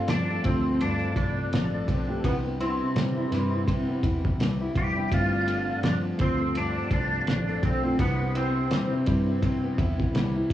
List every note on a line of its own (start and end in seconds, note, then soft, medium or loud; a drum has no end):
0.00 0.79 G2 medium
0.00 0.34 A3 medium
0.00 0.34 C4 medium
0.00 0.34 D4 medium
0.00 1.01 D4 medium
0.00 0.11 F4 loud
0.00 0.35 F4 medium
0.00 0.29 A4 medium
0.08 0.37 G2 medium
0.08 1.52 F3 medium
0.08 0.46 D4 loud
0.08 snare loud
0.08 ride medium
0.30 0.65 A4 medium
0.43 1.02 D2 loud
0.43 1.73 A3 medium
0.43 1.74 C4 medium
0.43 1.88 C4 medium
0.43 0.82 C4 medium
0.43 1.74 D4 medium
0.43 1.75 F4 medium
0.43 kick loud
0.43 ride medium
0.66 1.16 A4 medium
0.80 2.33 G2 medium
0.80 1.16 D4 loud
0.80 ride medium
1.02 1.37 D4 medium
1.16 1.45 C2 medium
1.16 2.28 D4 loud
1.16 1.74 A4 medium
1.16 kick loud
1.16 ride medium
1.38 2.33 D4 medium
1.52 1.81 A1 medium
1.52 2.33 F3 medium
1.52 snare loud
1.52 ride medium
1.75 2.09 A4 medium
1.88 2.17 B1 medium
1.88 2.45 C4 medium
1.88 kick loud
1.88 ride medium
2.08 2.21 A3 medium
2.08 2.22 C4 medium
2.08 2.22 D4 medium
2.08 2.23 G4 medium
2.08 2.33 A4 medium
2.22 2.81 C2 loud
2.22 3.66 C3 loud
2.22 3.20 G3 medium
2.22 2.34 B3 loud
2.22 3.21 D4 medium
2.22 3.22 E4 medium
2.22 3.21 B4 medium
2.22 kick loud
2.22 ride medium
2.46 2.82 B3 medium
2.60 4.00 C4 medium
2.60 3.16 E4 medium
2.60 ride medium
2.96 3.25 C3 loud
2.96 3.32 G3 medium
2.96 snare loud
2.96 ride medium
3.17 3.52 E4 medium
3.30 3.89 G2 medium
3.30 4.61 G3 medium
3.30 4.39 G3 medium
3.30 4.62 D4 medium
3.30 4.62 E4 medium
3.30 4.61 B4 medium
3.30 snare soft
3.30 ride medium
3.53 4.03 E4 medium
3.67 5.20 C3 medium
3.67 kick medium
3.67 ride medium
3.89 4.24 B3 medium
4.03 4.32 E2 medium
4.03 4.60 E4 medium
4.03 kick loud
4.03 ride medium
4.25 5.20 B3 medium
4.25 kick loud
4.39 4.68 C2 medium
4.39 4.75 G3 medium
4.39 snare loud
4.39 ride medium
4.61 4.95 E4 medium
4.75 5.04 F1 medium
4.75 5.50 G3 medium
4.75 5.13 G4 loud
4.75 kick loud
4.75 ride medium
4.95 5.09 G3 medium
4.95 5.09 B3 medium
4.95 5.10 D4 medium
4.95 5.20 E4 medium
4.95 5.10 E4 medium
5.10 5.69 G1 loud
5.10 6.54 G2 loud
5.10 6.08 A3 medium
5.10 6.09 C4 medium
5.10 6.09 D4 medium
5.10 6.09 F4 medium
5.10 5.87 F4 loud
5.10 kick loud
5.10 ride medium
5.33 5.68 D4 medium
5.47 6.04 A4 medium
5.47 ride medium
5.69 6.76 D4 medium
5.83 6.12 G2 loud
5.83 7.26 F3 medium
5.83 5.95 D4 loud
5.83 snare loud
5.83 ride medium
6.05 6.40 A4 medium
6.18 6.77 D2 loud
6.18 7.48 A3 medium
6.18 7.63 C4 medium
6.18 7.49 C4 medium
6.18 6.57 C4 loud
6.18 7.49 D4 medium
6.18 7.50 F4 medium
6.18 kick loud
6.18 ride medium
6.41 6.90 A4 medium
6.55 8.08 G2 medium
6.55 6.92 D4 loud
6.55 ride medium
6.77 7.12 D4 medium
6.91 7.20 C2 loud
6.91 7.66 D4 loud
6.91 7.48 A4 medium
6.91 kick loud
6.91 ride medium
7.13 8.08 D4 medium
7.27 7.56 A1 loud
7.27 8.08 F3 medium
7.27 snare loud
7.27 ride medium
7.49 7.84 A4 medium
7.63 7.92 B1 medium
7.63 8.21 C4 medium
7.63 8.00 C4 medium
7.63 kick loud
7.63 ride medium
7.83 7.96 A3 medium
7.83 7.97 C4 medium
7.83 7.97 D4 medium
7.83 7.98 F4 medium
7.83 8.08 A4 medium
7.98 8.72 C2 loud
7.98 9.41 C3 medium
7.98 8.96 G3 medium
7.98 8.33 B3 loud
7.98 8.96 D4 medium
7.98 8.97 E4 medium
7.98 8.96 B4 medium
7.98 kick loud
7.98 ride medium
8.21 8.57 B3 medium
8.35 9.76 C4 medium
8.35 8.91 E4 medium
8.35 ride medium
8.71 8.99 C3 medium
8.71 9.06 G3 medium
8.71 snare loud
8.71 ride medium
8.92 9.27 E4 medium
9.05 9.65 G2 loud
9.05 10.36 G3 medium
9.05 10.13 G3 medium
9.05 10.37 D4 medium
9.05 10.37 E4 medium
9.05 10.36 B4 medium
9.05 kick loud
9.05 ride medium
9.28 9.77 E4 medium
9.42 10.53 C3 medium
9.42 kick medium
9.42 ride medium
9.64 9.99 B3 medium
9.78 10.07 E2 medium
9.78 10.34 E4 medium
9.78 kick loud
9.78 ride medium
10.00 10.53 B3 medium
10.00 kick loud
10.14 10.43 C2 loud
10.14 10.49 G3 medium
10.14 snare loud
10.14 ride medium
10.36 10.53 E4 medium
10.50 10.53 G3 medium